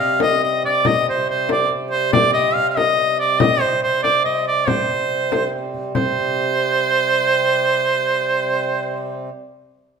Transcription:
0.00 0.83 C3 medium
0.00 0.82 G3 medium
0.00 0.19 F5 medium
0.20 0.41 D#5 medium
0.20 frame drum medium
0.44 0.63 D#5 medium
0.63 0.88 D5 medium
0.63 frame drum soft
0.84 5.93 C3 medium
0.84 5.93 G3 medium
0.84 1.07 D#5 loud
0.84 frame drum medium
1.09 1.27 C5 medium
1.28 1.48 C5 medium
1.28 frame drum soft
1.49 1.70 D5 medium
1.49 frame drum medium
1.71 frame drum soft
1.91 2.10 C5 medium
2.13 2.32 D5 loud
2.13 frame drum medium
2.33 2.56 D#5 medium
2.54 2.69 F5 loud
2.54 frame drum soft
2.69 2.78 F5 medium
2.76 3.19 D#5 loud
2.76 frame drum medium
2.98 frame drum soft
3.19 3.42 D5 medium
3.40 3.62 D#5 loud
3.40 frame drum medium
3.61 3.82 C5 medium
3.83 4.02 C5 medium
3.83 frame drum soft
4.03 4.23 D5 loud
4.03 frame drum medium
4.25 4.45 D#5 medium
4.25 frame drum soft
4.47 4.69 D5 medium
4.67 5.53 C5 medium
4.67 frame drum medium
4.89 frame drum soft
5.32 frame drum medium
5.74 frame drum soft
5.94 9.30 C3 medium
5.94 9.30 G3 medium
5.94 9.26 C5 loud
5.94 frame drum medium

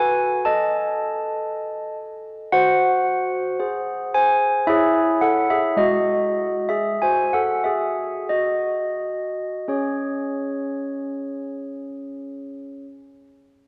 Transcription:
0.00 0.41 F#4 medium
0.00 0.41 B4 medium
0.00 0.42 G#5 medium
0.45 2.48 A4 medium
0.45 1.96 D#5 medium
0.45 1.96 A5 medium
2.52 3.56 F#4 medium
2.52 3.58 C5 medium
2.52 4.09 F#5 loud
3.60 4.65 G#4 soft
3.60 4.13 C5 medium
4.14 4.65 C5 medium
4.14 4.66 G#5 medium
4.67 5.78 E4 medium
4.67 5.21 G#4 medium
4.67 5.77 C#5 medium
4.67 5.21 E5 loud
5.21 5.49 A4 medium
5.21 5.51 F#5 medium
5.50 5.79 G#4 medium
5.50 5.80 E5 medium
5.76 6.96 G#3 medium
5.76 6.66 F#4 medium
5.76 6.65 D#5 medium
6.69 6.99 G#4 medium
6.69 7.01 E5 medium
7.02 8.29 F#4 soft
7.02 7.31 C5 medium
7.02 7.33 G#5 medium
7.33 7.63 A4 medium
7.33 7.65 F#5 medium
7.64 8.26 G#4 medium
7.64 8.27 E5 medium
8.29 9.66 F#4 soft
8.29 9.65 D#5 medium
9.68 12.84 C#4 medium
9.68 12.85 G#4 soft
9.68 12.85 C#5 medium

